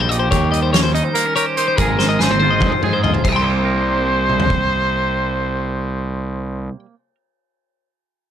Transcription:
0.00 0.32 A#1 medium
0.00 0.29 C4 medium
0.00 0.76 D#4 medium
0.09 0.31 F3 medium
0.09 0.84 G4 medium
0.09 0.19 D#5 medium
0.09 closed hi-hat soft
0.19 0.31 C5 medium
0.31 1.00 D#2 medium
0.31 1.75 D#3 medium
0.31 0.51 C#5 medium
0.31 kick loud
0.31 closed hi-hat medium
0.51 1.75 G3 medium
0.51 0.62 D#5 medium
0.51 closed hi-hat soft
0.62 0.73 C5 medium
0.73 1.14 C#4 medium
0.73 0.83 C#5 medium
0.73 snare loud
0.73 closed hi-hat medium
0.83 0.94 C5 medium
0.94 1.57 D#4 medium
0.94 1.04 D#5 medium
0.94 closed hi-hat soft
1.04 1.26 C5 medium
1.14 1.26 A#3 medium
1.14 1.34 A#4 medium
1.14 closed hi-hat medium
1.26 1.78 C#4 soft
1.26 1.35 A#4 medium
1.36 1.78 G4 medium
1.36 1.45 A#4 medium
1.36 1.46 C#5 medium
1.36 closed hi-hat medium
1.46 1.57 C5 medium
1.56 1.80 D#4 medium
1.56 1.67 A#4 medium
1.56 1.78 C5 medium
1.56 closed hi-hat medium
1.68 1.78 C5 medium
1.77 1.95 G#1 medium
1.77 3.22 G#2 medium
1.77 1.98 G#3 soft
1.77 2.20 C4 soft
1.77 2.41 F4 medium
1.77 1.99 G#4 medium
1.77 2.23 A#4 medium
1.77 kick loud
1.77 closed hi-hat medium
1.82 2.82 G#4 medium
1.99 2.17 G#1 medium
1.99 3.22 G#3 medium
1.99 2.08 C5 medium
1.99 snare soft
2.09 2.19 D#5 medium
2.19 2.64 G#1 medium
2.19 2.31 A#3 medium
2.19 2.31 G#4 medium
2.19 3.04 C5 medium
2.19 snare medium
2.30 2.61 C4 soft
2.30 2.38 C5 medium
2.30 high tom soft
2.40 3.03 F4 medium
2.40 2.51 C5 medium
2.40 high tom medium
2.50 2.72 D#5 medium
2.60 2.70 G#2 medium
2.60 3.22 C4 medium
2.60 kick loud
2.60 mid tom medium
2.72 2.82 C5 medium
2.72 mid tom medium
2.82 3.17 G#2 medium
2.82 2.93 G#4 medium
2.82 3.22 G#4 medium
2.82 mid tom medium
2.93 3.03 C5 medium
3.04 3.22 F4 medium
3.04 3.14 D#5 medium
3.04 floor tom medium
3.14 3.23 C5 medium
3.14 floor tom medium
3.24 6.68 C2 medium
3.24 6.75 C3 medium
3.24 3.28 C5 medium
3.24 6.68 C5 loud
3.24 3.32 D#5 medium
3.24 kick medium
3.24 crash medium
3.32 6.85 G3 medium
3.32 6.79 G5 medium
3.32 6.79 C6 medium
3.44 6.94 A#3 soft
3.65 7.15 A#4 soft
4.29 mid tom soft
4.40 floor tom medium
4.50 kick medium

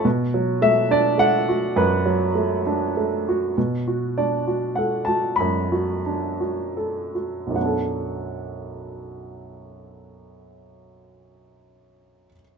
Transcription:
0.05 1.72 B2 medium
0.34 1.44 F#3 soft
0.62 1.16 A3 soft
0.62 0.91 E5 medium
0.91 2.03 D4 medium
0.91 1.20 D5 medium
1.18 2.31 A3 soft
1.18 1.79 F#5 medium
1.49 2.62 F#4 soft
1.76 3.52 F#2 medium
1.76 2.92 B4 medium
2.06 3.23 F#3 soft
2.35 2.95 A3 soft
2.67 3.54 D4 soft
2.97 3.55 A3 soft
3.29 3.56 F#4 soft
3.58 5.34 B2 soft
3.88 4.46 F#4 soft
4.18 5.35 D4 soft
4.18 4.78 D5 soft
4.47 5.07 F#4 soft
4.75 6.01 A4 soft
4.75 5.04 F#5 medium
5.05 5.71 F#4 soft
5.05 5.38 A5 medium
5.36 7.10 B5 medium
5.40 7.49 F#2 soft
5.72 6.39 F#4 soft
6.06 7.54 D4 soft
6.40 7.13 F#4 soft
6.77 7.55 A4 soft
7.15 7.55 F#4 soft
7.47 12.23 B1 soft
7.47 12.27 F#2 soft
7.55 12.31 F#3 soft
7.55 12.35 B3 soft
7.55 12.32 F#5 soft
7.62 12.39 D4 soft
7.62 12.42 A4 soft

